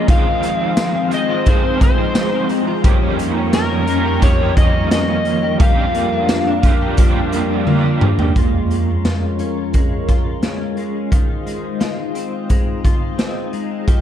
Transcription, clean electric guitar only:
Already playing: G#3 C#4
0.09 D#3 F4
0.26 C4
0.43 G#3
0.60 C4
0.78 G#3
0.95 C4
1.12 G#3
1.29 F4
1.46 D#3 F4
1.64 C4
1.81 G#3
1.98 C4
2.15 G#3
2.33 C4
2.50 G#3
2.67 F4
2.85 F3 G4
3.02 C#4
3.19 A#3
3.36 C#4
3.54 A#3
3.70 C#4
3.88 A#3
4.05 G4
4.22 F3 G4
4.40 C#4
4.57 A#3
4.74 C#4
4.91 A#3
5.08 C#4
5.26 A#3
5.43 G4
5.60 F3 G4
5.77 D4
5.95 A#3
6.12 D4
6.30 A#3
6.47 D4
6.64 A#3
6.81 G4
6.99 F3 G4
7.16 D4
7.33 A#3
7.50 D4
7.67 A#3
7.85 D4
8.02 A#3
8.19 G4
8.36 G#3 F4
8.71 G#3
9.05 F4
9.40 C#4
9.74 G#3
10.09 F4
10.43 C#4
10.78 G#3
11.12 D#3 F4
11.46 G#3
11.80 F4
12.15 C4
12.50 G#3
12.84 F4
13.18 C4
13.53 G#3
13.88 F3 G4

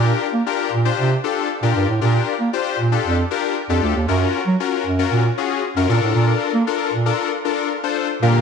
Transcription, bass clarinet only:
Already playing: A#2
0.34 A#3
0.72 A#2
0.98 C3
1.63 A#2
1.76 G2
1.89 A2
2.02 A#2
2.40 A#3
2.79 A#2
3.05 F2
3.70 F2
3.83 D2
3.96 D#2
4.08 F#2
4.47 F#3
4.86 F#2
5.12 A#2
5.77 F#2
5.90 A#2
6.02 A2
6.15 A#2
6.54 A#3
6.93 A#2
8.22 A#2

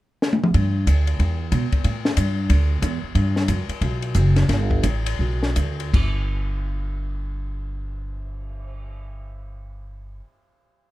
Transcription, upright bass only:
0.54 G2
0.87 D2
1.19 E2
1.52 B2
1.72 muted upright bass stroke
1.84 A2
2.17 G2
2.49 D2
2.82 E2
3.04 muted upright bass stroke
3.15 G2
3.48 F#2
3.69 muted upright bass stroke
3.81 B1
4.15 F#1
4.49 G1
4.83 A1
5.19 B1
5.56 D2
5.94 G1

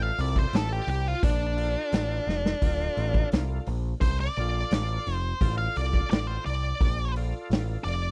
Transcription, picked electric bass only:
0.19 C2
0.53 A1
0.87 C2
1.23 A#1
1.93 A1
2.27 F1
2.62 D1
2.97 A1
3.33 C2
3.67 A#1
4.02 C2
4.37 A#1
4.71 A1
5.07 F1
5.41 A1
5.77 C2
6.12 A1
6.46 C2
6.80 A#1
7.50 A1
7.85 F1

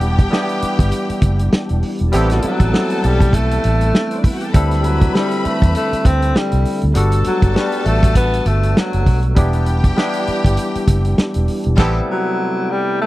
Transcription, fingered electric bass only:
Already playing: E1
0.63 muted fingered electric bass stroke
0.79 G1
1.10 muted fingered electric bass stroke
1.23 F#1
1.71 E1
2.01 E1
2.13 A1
2.60 A1
3.05 B1
3.65 A1
4.55 D2
5.46 muted fingered electric bass stroke
5.62 E2
5.93 muted fingered electric bass stroke
6.05 D2
6.36 muted fingered electric bass stroke
6.53 C2
6.83 D2
6.96 G1
7.43 G1
7.86 A1
8.46 G1
8.94 F#1
9.07 B1
9.37 E1
10.28 muted fingered electric bass stroke
10.45 G1
10.76 muted fingered electric bass stroke
10.88 F#1
11.36 E1
11.66 E1
11.78 A1

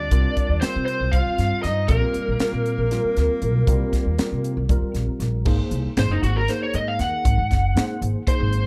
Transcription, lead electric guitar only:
Already playing: D5
0.61 C5
0.86 C5
1.12 F5
1.63 D#5
1.88 A#4
5.99 C5
6.11 D#4
6.23 F#4
6.36 A#4
6.49 C5
6.63 C#5
6.76 D#5
6.88 F5
7.01 F#5
8.28 C5

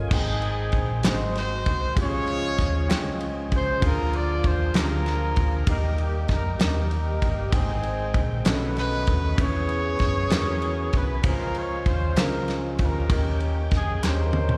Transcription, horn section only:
0.12 C4 D#4 G#4
1.05 D#4 F#4 C5
1.38 D#4 F#4 C5
2.00 F4 G#4 C#5
3.55 C5
3.85 F4 A#4
4.16 D5
4.47 C5
4.75 F4 A#4
5.68 D#4 G4 A#4
6.01 G4
6.32 A#4
6.61 D#4 G4 A#4
7.54 C4 D#4 G#4
8.47 D#4 F#4 B4
8.78 D#4 F#4 B4
9.40 G#4 C#5
10.96 B4
11.25 F4 A#4
11.58 C#5
11.87 C5
12.19 A#4
12.82 C#4 G4 A#4
13.75 G#4
14.05 A#3 C#4 G4 C5

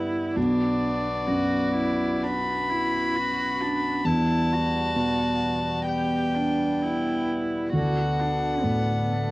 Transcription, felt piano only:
Already playing: G2 D3
0.36 B1
1.27 F#2
4.05 E2
4.96 B2
7.73 D2
8.64 A2

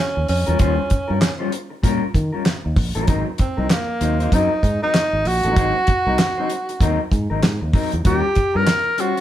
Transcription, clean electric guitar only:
0.15 muted clean electric guitar stroke
0.47 G3 C#4 F4 A#4
0.59 G3 C#4 F4 C5
0.78 muted clean electric guitar stroke
0.90 muted clean electric guitar stroke
1.08 G3 C#4 F4 A#4
1.20 muted clean electric guitar stroke
1.39 G3 C#4 F4 C5
1.52 muted clean electric guitar stroke
1.70 muted clean electric guitar stroke
1.83 G3 C#4 F4 A#4
2.14 muted clean electric guitar stroke
2.32 G3 C#4 F4 A#4
2.45 muted clean electric guitar stroke
2.65 muted clean electric guitar stroke
2.95 G3 C#4 F4 A#4
3.07 F#3 C4 D#4 A#4
3.26 muted clean electric guitar stroke
3.38 muted clean electric guitar stroke
3.57 F#3 C4 D#4 A#4
3.88 muted clean electric guitar stroke
4.00 F#3 C4 D#4 C5
4.20 F#3 C4 D#4 C5
4.33 F#3 C4 D#4 A#4
4.63 muted clean electric guitar stroke
4.82 F#3 C4 D#4 A#4
4.95 muted clean electric guitar stroke
5.13 muted clean electric guitar stroke
5.44 F#3 C4 D#4 A#4
5.57 F#3 C4 D#4 C5
5.75 muted clean electric guitar stroke
5.88 muted clean electric guitar stroke
6.07 F#3 C4 D#4 A#4
6.38 F#3 C4 D#4 C5
6.51 muted clean electric guitar stroke
6.69 muted clean electric guitar stroke
6.81 F#3 C4 D#4 A#4
7.12 muted clean electric guitar stroke
7.30 F#3 C4 D#4 A#4
7.43 muted clean electric guitar stroke
7.61 muted clean electric guitar stroke
7.73 F#3 C4 D#4 A#4
7.93 muted clean electric guitar stroke
8.04 G3 C#4 F4 A#4
8.24 muted clean electric guitar stroke
8.36 muted clean electric guitar stroke
8.54 G3 C#4 F4 A#4
8.66 muted clean electric guitar stroke
8.85 muted clean electric guitar stroke
8.98 G3 C#4 F4 C5
9.16 F4 C5

